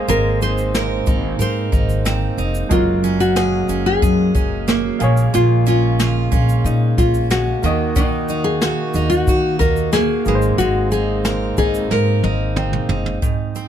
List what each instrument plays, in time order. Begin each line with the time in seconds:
Already playing: harmonium G#3 A#3 C4, steel-string acoustic guitar A#3 D#4, upright piano A#3 G#4 C5
0.08 upright bass G#1, steel-string acoustic guitar G#3, nylon-string guitar A#4, shaker
0.42 steel-string acoustic guitar D#4, nylon-string guitar C5, shaker
0.58 shaker
0.75 steel-string acoustic guitar A#4, snare, shaker
1.06 upright bass G#1, steel-string acoustic guitar D#4, kick, shaker
1.39 upright bass G#2, steel-string acoustic guitar A#4, nylon-string guitar C5, shaker
1.72 upright bass G#1, steel-string acoustic guitar D#4, kick, shaker
1.89 shaker
2.05 steel-string acoustic guitar C4, snare, shaker
2.37 upright bass F1, steel-string acoustic guitar D#4, shaker
2.55 shaker
2.69 upright bass F#1, steel-string acoustic guitar F#3, upright piano F#3 G#3 A#4, harmonium F#3, nylon-string guitar F4, kick, shaker
3.04 steel-string acoustic guitar C#4, shaker
3.20 nylon-string guitar F#4, shaker
3.36 steel-string acoustic guitar G#4, snare, shaker
3.69 upright bass F#1, steel-string acoustic guitar C#4, shaker
3.86 nylon-string guitar G#4
4.02 upright bass F#2, steel-string acoustic guitar G#4, kick, shaker
4.35 upright bass F#1, steel-string acoustic guitar C#4, kick, shaker
4.68 steel-string acoustic guitar A#3, snare, shaker
4.88 nylon-string guitar F#4
4.99 upright bass A#1, steel-string acoustic guitar A#2, harmonium C#3, upright piano A#3 G#4, shaker
5.03 upright piano C#5
5.17 shaker
5.33 upright bass A#1, steel-string acoustic guitar A#2, nylon-string guitar F4, shaker
5.66 steel-string acoustic guitar C#4, nylon-string guitar F4, shaker
6.00 steel-string acoustic guitar F4, snare, shaker
6.32 upright bass A#1, steel-string acoustic guitar C#4, kick, shaker
6.49 shaker
6.64 upright bass A#2, nylon-string guitar D#4, shaker
6.98 upright bass A#1, steel-string acoustic guitar C#4, nylon-string guitar F4, kick, snare, shaker
7.14 shaker
7.30 steel-string acoustic guitar G#3, nylon-string guitar F#4, snare, shaker
7.62 upright bass D#2, harmonium D#3 A#3 F#4, steel-string acoustic guitar D#3, upright piano A#3 F#4 D#5, shaker
7.96 steel-string acoustic guitar D#3, nylon-string guitar D#4, kick, shaker
8.29 steel-string acoustic guitar D#4, shaker
8.44 nylon-string guitar G#4
8.62 steel-string acoustic guitar F#4, snare, shaker
8.94 upright bass D#2, steel-string acoustic guitar D#4, shaker
9.10 nylon-string guitar F#4, shaker
9.27 upright bass D#3, steel-string acoustic guitar F#4, kick, shaker
9.59 upright bass D#2, steel-string acoustic guitar D#4, nylon-string guitar A#4, kick, snare, shaker
9.76 shaker
9.93 steel-string acoustic guitar A#3, nylon-string guitar G#4, snare, shaker
10.25 upright bass G#1, harmonium G#3 C4, steel-string acoustic guitar G#3, upright piano A#3 G#4, shaker
10.29 upright piano B4
10.35 upright piano C5
10.42 shaker
10.58 upright bass G#1, steel-string acoustic guitar G#3, nylon-string guitar F#4, shaker
10.92 steel-string acoustic guitar D#4, nylon-string guitar G#4, shaker
11.25 steel-string acoustic guitar A#4, snare, shaker
11.57 upright bass G#1, steel-string acoustic guitar D#4, nylon-string guitar G#4, kick, shaker
11.74 shaker
11.90 upright bass G#2, steel-string acoustic guitar A#4, nylon-string guitar A#4, snare
12.23 upright bass G#1, steel-string acoustic guitar D#4, high tom
12.56 steel-string acoustic guitar C4, mid tom
12.73 mid tom
12.89 upright bass F#1, steel-string acoustic guitar D#4, floor tom
13.06 floor tom
13.22 steel-string acoustic guitar G#2, kick, shaker
13.55 steel-string acoustic guitar C4, shaker